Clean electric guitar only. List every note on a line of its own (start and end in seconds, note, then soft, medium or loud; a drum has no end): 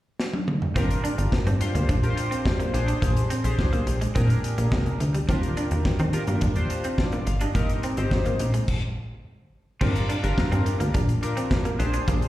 0.76 0.88 C4 medium
1.04 1.16 D4 medium
1.18 muted clean electric guitar stroke soft
1.47 1.58 C4 medium
1.61 muted clean electric guitar stroke soft
1.75 1.87 A#3 medium
1.89 2.01 D4 medium
2.17 muted clean electric guitar stroke soft
2.31 2.43 C4 medium
2.60 2.71 A#3 medium
2.74 muted clean electric guitar stroke soft
2.88 3.00 D4 medium
3.02 3.14 A#3 medium
3.30 3.42 C4 medium
3.44 muted clean electric guitar stroke soft
3.73 3.85 A#3 medium
3.87 muted clean electric guitar stroke soft
4.01 4.13 G#3 medium
4.15 4.27 C4 medium
4.30 muted clean electric guitar stroke soft
4.58 4.70 A#3 medium
4.72 4.84 G#3 medium
5.00 muted clean electric guitar stroke soft
5.15 5.26 G3 medium
5.29 5.41 C4 medium
5.57 5.69 D4 medium
5.72 muted clean electric guitar stroke soft
6.00 6.11 C4 medium
6.14 muted clean electric guitar stroke soft
6.28 6.40 A#3 medium
6.42 6.54 D4 medium
6.71 muted clean electric guitar stroke soft
6.85 6.96 C4 medium
7.13 7.25 A#3 medium
7.27 muted clean electric guitar stroke soft
7.41 7.53 D4 medium
7.55 7.67 A#3 medium
7.84 7.95 C4 medium
7.98 muted clean electric guitar stroke soft
8.26 8.38 A#3 medium
8.40 muted clean electric guitar stroke soft
8.54 8.66 G#3 medium
9.81 9.93 C4 medium
10.09 10.21 D4 medium
10.24 muted clean electric guitar stroke soft
10.52 10.64 C4 medium
10.66 muted clean electric guitar stroke soft
10.80 10.92 A#3 medium
10.94 11.06 D4 medium
11.23 muted clean electric guitar stroke soft
11.37 11.49 C4 medium
11.65 11.77 A#3 medium
11.80 muted clean electric guitar stroke soft
11.94 12.06 D4 medium
12.08 12.20 A#3 medium